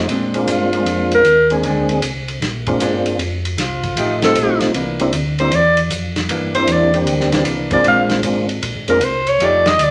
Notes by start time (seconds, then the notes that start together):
0.08 A#2 G#3 C4 D4, ride
0.34 G#3 A#3 C4 D4 F4, ride
0.47 G2, hi-hat pedal, ride
0.52 F4
0.73 G#3 A#3 C4 D4 F4, ride
0.85 F2, ride
1.12 A#4, ride
1.24 D#2, hi-hat pedal, ride
1.50 G#3 A#3 C4 D4 G#4, ride
1.63 D2 G#3 C4 D4, ride
1.89 ride
2.02 C2, hi-hat pedal, ride
2.28 ride
2.41 A#1, snare, ride
2.67 G#3 A#3 C4 D4 F4, kick, ride
2.80 G1 G#3 C4 D4, hi-hat pedal, ride
3.06 ride
3.18 F1, ride
3.45 ride
3.58 C2 F4, snare, hi-hat pedal, ride
3.83 kick, ride
3.96 A1 F3 A3 D#4 G4, ride
4.22 G3 A3 C4 D#4 F4 A4, snare, ride
4.35 A#1, hi-hat pedal, ride
4.60 A#1, snare, ride
4.74 C2 E3 A#3 D4, ride
5.00 G3 A#3 C4 D4 E4, ride
5.13 D2, hi-hat pedal, ride
5.38 G3 A#3 C4 D4 E4 C5, ride
5.52 E2 D5, ride
5.77 ride
5.90 F2, hi-hat pedal, ride
6.16 snare, ride
6.29 G2 E3 A#3 D4, ride
6.55 G3 A#3 C4 D4 E4 C5, ride
6.67 E2, hi-hat pedal, ride
6.72 D5
6.94 G3 A#3 C4 D4 G4, ride
7.06 D2, ride
7.20 snare
7.32 E3 A#3 D4, snare, ride
7.45 C2, hi-hat pedal, ride
7.71 G#3 A#3 C4 D4 F4 D5, kick, ride
7.84 A#1 G#3 C4 D4, ride
7.88 F5
8.10 snare, ride
8.23 G#1 G#3 A#3 C4 D4 F4, hi-hat pedal, ride
8.49 ride
8.62 A#1, ride
8.75 G#1
8.87 F1 G#3 A#3 C4 D4 F4 A#4, ride
9.01 C2 C5, hi-hat pedal, ride
9.27 C#5, ride
9.39 F2 F3 A3 D#4 G4, ride
9.44 D5
9.66 D#5, snare, ride
9.79 D2, hi-hat pedal, ride
9.83 D5